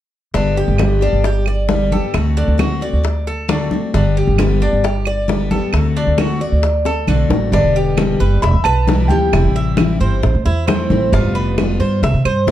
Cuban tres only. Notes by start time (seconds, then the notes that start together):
0.35 D4
0.57 G4
1.02 D4
1.25 G4
1.48 D5
1.92 A4
2.37 D4
2.60 F#4
2.82 D5
3.27 A4
3.49 D4
3.94 D4
4.17 G4
4.62 D4
4.84 G4
5.07 D5
5.51 A4
5.97 D4
6.19 F#4
6.41 D5
6.86 A4
7.08 D4
7.53 D4
7.76 G4
8.20 B4
8.43 E5
8.65 B4
9.11 G4
9.56 E5
10.01 C5
10.45 E4
10.67 C5
11.13 F4
11.35 B4
11.80 C5
12.03 E5
12.25 C5